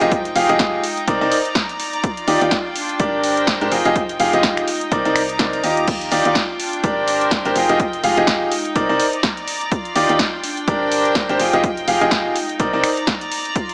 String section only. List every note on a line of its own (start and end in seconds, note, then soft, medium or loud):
0.00 2.33 D#4 medium
0.00 0.27 A#4 medium
0.00 0.27 C5 medium
0.00 1.32 G5 medium
0.05 0.84 G#3 medium
1.12 2.33 A#5 medium
1.39 3.15 D5 medium
2.04 3.15 F4 medium
2.37 5.16 G5 medium
2.76 3.72 D4 medium
3.20 4.11 A#4 medium
3.20 4.11 C5 medium
3.72 6.17 D#4 medium
4.15 4.68 G#3 medium
5.10 6.99 D6 medium
5.17 6.17 A#5 medium
5.88 6.99 F4 medium
6.21 9.00 G5 medium
6.60 7.56 D4 medium
6.82 7.95 C5 medium
7.03 7.95 A#4 medium
7.56 10.01 D#4 medium
7.99 8.52 G#3 medium
9.06 10.83 D5 medium
9.06 10.01 A#5 medium
9.72 10.83 F4 medium
10.05 12.84 G5 medium
10.44 11.40 D4 medium
10.68 11.79 A#4 medium
10.75 11.79 C5 medium
11.40 13.74 D#4 medium
11.84 12.36 G#3 medium
12.89 13.74 D5 medium
12.89 13.74 A#5 medium
13.56 13.74 F4 medium